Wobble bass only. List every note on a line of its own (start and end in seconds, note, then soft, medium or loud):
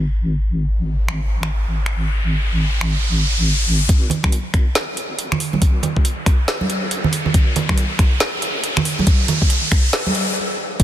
0.00 3.88 G#1 medium
3.89 4.74 G#1 medium
4.76 5.61 G#1 loud
5.62 6.47 G#1 loud
6.48 7.33 G#1 loud
7.34 8.19 G#1 medium
8.21 9.06 G#1 loud
9.07 9.92 G#1 loud
9.93 10.37 A#1 loud
10.80 10.84 G#1 loud